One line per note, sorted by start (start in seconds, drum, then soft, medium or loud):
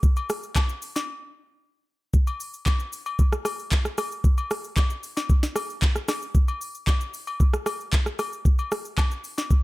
0.03 kick loud
0.03 shaker medium
0.16 high agogo medium
0.16 shaker medium
0.30 cross-stick loud
0.30 open hi-hat medium
0.30 shaker medium
0.43 shaker medium
0.56 kick loud
0.56 clap medium
0.56 high agogo medium
0.56 low woodblock medium
0.56 shaker medium
0.69 shaker medium
0.82 open hi-hat medium
0.82 shaker loud
0.95 snare medium
0.95 high agogo medium
0.95 shaker soft
2.14 kick loud
2.14 shaker medium
2.27 high agogo medium
2.27 shaker medium
2.40 open hi-hat medium
2.40 shaker medium
2.54 shaker medium
2.66 kick loud
2.66 clap medium
2.66 high agogo medium
2.66 shaker medium
2.80 shaker medium
2.93 open hi-hat medium
2.93 shaker loud
3.06 high agogo medium
3.06 shaker soft
3.19 kick loud
3.19 shaker medium
3.32 cross-stick loud
3.32 shaker medium
3.45 cross-stick loud
3.45 open hi-hat medium
3.45 high agogo medium
3.45 shaker loud
3.59 shaker soft
3.72 kick medium
3.72 clap medium
3.72 shaker medium
3.85 cross-stick medium
3.85 shaker medium
3.98 cross-stick loud
3.98 open hi-hat medium
3.98 high agogo medium
3.98 shaker loud
4.12 shaker medium
4.24 kick loud
4.24 shaker medium
4.38 high agogo medium
4.38 shaker medium
4.51 cross-stick loud
4.51 open hi-hat medium
4.51 shaker medium
4.64 shaker medium
4.77 kick loud
4.77 clap loud
4.77 high agogo medium
4.77 shaker medium
4.90 shaker medium
5.03 open hi-hat medium
5.03 shaker loud
5.16 snare medium
5.16 high agogo medium
5.16 shaker soft
5.29 kick loud
5.29 shaker medium
5.43 snare medium
5.43 shaker medium
5.56 cross-stick loud
5.56 open hi-hat medium
5.56 high agogo medium
5.56 shaker loud
5.70 shaker soft
5.82 kick medium
5.82 clap medium
5.82 shaker medium
5.96 cross-stick medium
5.96 shaker medium
6.08 cross-stick loud
6.08 snare medium
6.08 open hi-hat medium
6.08 high agogo medium
6.08 shaker loud
6.22 shaker medium
6.35 kick loud
6.35 shaker medium
6.48 high agogo medium
6.48 shaker medium
6.61 open hi-hat medium
6.61 shaker medium
6.75 shaker medium
6.87 kick loud
6.87 clap loud
6.87 high agogo medium
6.87 shaker medium
7.01 shaker medium
7.14 open hi-hat medium
7.14 shaker loud
7.27 high agogo medium
7.27 shaker soft
7.40 kick loud
7.40 shaker medium
7.53 cross-stick loud
7.53 shaker medium
7.66 cross-stick loud
7.66 open hi-hat medium
7.66 high agogo medium
7.66 shaker loud
7.81 shaker soft
7.93 kick medium
7.93 clap medium
7.93 shaker medium
8.06 cross-stick medium
8.06 shaker medium
8.19 cross-stick medium
8.19 open hi-hat medium
8.19 high agogo medium
8.19 shaker loud
8.33 shaker medium
8.45 kick loud
8.45 shaker medium
8.59 high agogo medium
8.59 shaker medium
8.72 cross-stick loud
8.72 open hi-hat medium
8.72 shaker medium
8.85 shaker medium
8.98 kick loud
8.98 clap medium
8.98 high agogo medium
8.98 low woodblock medium
8.98 shaker medium
9.11 shaker medium
9.24 open hi-hat medium
9.24 shaker loud
9.37 snare medium
9.37 high agogo medium
9.37 shaker soft
9.50 kick loud
9.50 shaker medium